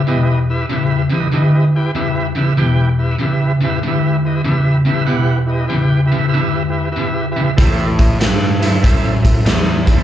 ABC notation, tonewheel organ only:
X:1
M:4/4
L:1/8
Q:"Swing" 1/4=96
K:Ador
V:1 name="Tonewheel organ"
[EGB^d] [EGBe] [EGBe] [EGBd] [EGBd] [EGBg] [EGBe] [EGBe] | [EGBg] [EGBe] [EGBe] [EGBe] [EGBe] [EGB^d] [EGBe] [EGBe] | [EGBf] [EGB^d] [EGBg] [EGBe] [EGBe] [EGBe] [EGBe] [EGBe] | [EAce] [EAc^d] [EAcf] [EAce] [EAce] [EAce] [EAcd] [EAce] |]